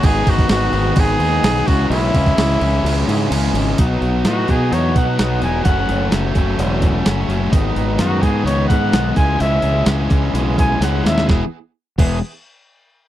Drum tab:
CC |x-x-x-x-x-x-x-x-|x-x-x-x-x-x-x-x-|----------------|----------------|
HH |----------------|----------------|o-o-o-o-o-o-o-o-|o-o-o-o-o-o-o-o-|
SD |----o-------o---|----o-----------|----o-------o---|----o-------o---|
BD |o-oo----o-----o-|--oo------------|o-----o---o-----|o-----o---o-----|

CC |----------------|----------------|------x---------|
HH |o-o-o-o-o-o-o-o-|o-o-o-o-o-o-o-o-|----------------|
SD |----o-----o-o---|----o-------o-oo|o---------------|
BD |o-----o---o---o-|------o---o-----|o-----o---------|